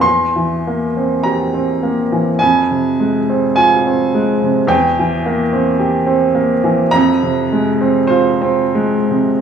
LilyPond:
<<
  \new Staff \with { instrumentName = "Grand piano" } { \time 4/4 \key f \minor \tempo 4 = 52 c'''4 bes''4 aes''4 aes''4 | g''2 bes''4 c''4 | }
  \new Staff \with { instrumentName = "Grand piano" } { \time 4/4 \key f \minor e,16 e16 bes16 c'16 g'16 c'16 bes16 e16 f,16 c16 aes16 c'16 f'16 c'16 aes16 c16 | e,16 e16 bes16 c'16 g'16 c'16 bes16 e16 f,16 c16 aes16 c'16 f'16 c'16 aes16 c16 | }
>>